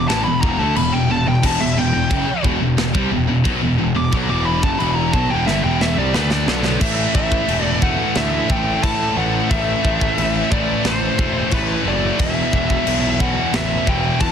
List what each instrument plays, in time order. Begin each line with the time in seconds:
0.08 picked electric bass A1, distorted electric guitar A2 E3, lead electric guitar A5, snare, china
0.24 picked electric bass E1, distorted electric guitar E2 B2, lead electric guitar B5
0.41 picked electric bass E1, distorted electric guitar E2 B2, lead electric guitar A#5, kick
0.58 picked electric bass D2, distorted electric guitar D3 A3, lead electric guitar A5
0.75 picked electric bass E1, distorted electric guitar E2 B2, lead electric guitar B5, china
0.92 picked electric bass E1, distorted electric guitar E2 B2, lead electric guitar G5
1.08 picked electric bass E1, distorted electric guitar E2 B2, lead electric guitar A5
1.25 picked electric bass E1, distorted electric guitar E2 B2, lead electric guitar G5
1.43 picked electric bass E1, distorted electric guitar E2 B2, lead electric guitar A5, kick, china, crash
1.60 picked electric bass E1, distorted electric guitar E2 B2, lead electric guitar E5
1.76 picked electric bass E1, distorted electric guitar E2 B2, lead electric guitar G5
1.93 picked electric bass E1, distorted electric guitar E2 B2
2.10 picked electric bass F#1, distorted electric guitar F#2 C#3, kick, china
2.27 muted distorted electric guitar stroke, muted picked electric bass stroke
2.44 picked electric bass E1, distorted electric guitar E2 B2, kick
2.61 picked electric bass E1, distorted electric guitar E2 B2
2.78 picked electric bass E1, distorted electric guitar E2 B2, snare, china
2.94 picked electric bass C2, distorted electric guitar C3 G3, kick
3.11 picked electric bass E1, distorted electric guitar E2 B2
3.28 picked electric bass E1, distorted electric guitar E2 B2
3.44 picked electric bass B1, distorted electric guitar B2 F#3, kick, china
3.61 picked electric bass E1, distorted electric guitar E2 B2
3.78 picked electric bass E1, distorted electric guitar E2 B2
3.95 picked electric bass E1, distorted electric guitar E2 B2, lead electric guitar D6
4.12 picked electric bass B1, distorted electric guitar B2 F#3, kick, china
4.29 picked electric bass E1, distorted electric guitar E2 B2 E3, lead electric guitar D6
4.46 lead electric guitar B5
4.62 picked electric bass F#1, distorted electric guitar F#2 C#3, lead electric guitar A5, kick
4.79 picked electric bass E1, distorted electric guitar E2 B2 E3, lead electric guitar B5, china
4.95 lead electric guitar A#5
5.13 picked electric bass B1, distorted electric guitar B2 F#3, lead electric guitar A5, kick
5.30 picked electric bass E1, distorted electric guitar E2 B2, lead electric guitar G5
5.47 picked electric bass G1, distorted electric guitar G2 D3, lead electric guitar E5, snare
5.64 picked electric bass E1, distorted electric guitar E2 B2 E3, lead electric guitar G5
5.81 lead electric guitar E5, snare
5.97 picked electric bass C2, distorted electric guitar C3 G3, lead electric guitar D5
6.14 picked electric bass D2, distorted electric guitar D3 A3 D4, lead electric guitar B4, snare
6.31 lead electric guitar D5, snare
6.48 picked electric bass B1, distorted electric guitar B2 F#3 B3, lead electric guitar A4 D5, snare
6.64 snare
6.81 picked electric bass A1, distorted electric guitar A2 E3 A3, lead electric guitar E5, kick, crash
7.14 picked electric bass A1, distorted electric guitar A2 E3 A3, lead electric guitar E5, kick
7.32 kick
7.47 picked electric bass E1, distorted electric guitar A2 E3 A3, crash
7.63 lead electric guitar D5
7.81 distorted electric guitar A2 E3 A3, lead electric guitar F#5, kick
8.15 picked electric bass D2, distorted electric guitar A2 E3 A3, lead electric guitar E5, snare, crash
8.49 picked electric bass A1, distorted electric guitar A2 E3 A3, lead electric guitar G5, kick
8.83 distorted electric guitar A2 E3 A3, picked electric bass A2, lead electric guitar A5, kick, crash
9.17 picked electric bass A1, distorted electric guitar A2 E3 A3, lead electric guitar F#5
9.50 picked electric bass A1, distorted electric guitar A2 E3 A3, lead electric guitar E5, kick, crash
9.84 picked electric bass A1, distorted electric guitar A2 E3 A3, kick
10.01 kick
10.18 picked electric bass A1, distorted electric guitar A2 E3 A3, crash
10.52 picked electric bass A1, distorted electric guitar A2 E3 A3, lead electric guitar D5, kick
10.85 picked electric bass A1, distorted electric guitar A2 E3 A3, lead electric guitar C5, snare, crash
11.18 picked electric bass E1, distorted electric guitar A2 E3 A3, kick
11.51 picked electric bass A1, distorted electric guitar A2 E3 A3, lead electric guitar B4, kick, crash
11.86 picked electric bass F#1, distorted electric guitar A2 E3 A3, lead electric guitar D5
12.19 picked electric bass E1, distorted electric guitar E2 B2 E3, lead electric guitar E5, kick, crash
12.53 picked electric bass E1, distorted electric guitar E2 B2 E3, lead electric guitar E5, kick
12.70 kick
12.86 picked electric bass B1, distorted electric guitar E2 B2 E3, crash
13.19 distorted electric guitar E2 B2 E3, lead electric guitar F#5, kick
13.54 picked electric bass A1, distorted electric guitar E2 B2 E3, lead electric guitar E5, snare, crash
13.86 picked electric bass E1, distorted electric guitar E2 B2 E3, lead electric guitar G5, kick
14.19 distorted electric guitar E2 B2 E3, picked electric bass E2, lead electric guitar A5, kick, crash